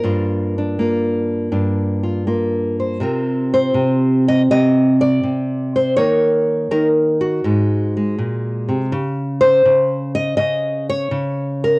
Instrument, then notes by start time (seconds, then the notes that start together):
nylon-string guitar
Already playing: A#3 A#4
0.04 G2 D4 F4
0.58 D4
0.79 A#3 F4
1.52 G2 D4
2.03 F4
2.27 A#3 F4
2.80 C5
3.00 C3 C4 F4 A#4
3.54 C5
3.74 C3
4.28 D#5
4.51 C3 D#5
5.01 D5
5.23 C3
5.76 C5
5.97 D#3 A#3 A#4 C#5
6.71 D#3 A#4
7.21 F#4
7.44 G#2 G#3
7.97 G#3
8.18 A#2
8.69 C3
8.92 C#3
9.41 C5
9.65 C#3
10.15 D#5
10.37 C#3 D#5
10.90 C#5
11.11 C#3
11.64 A#4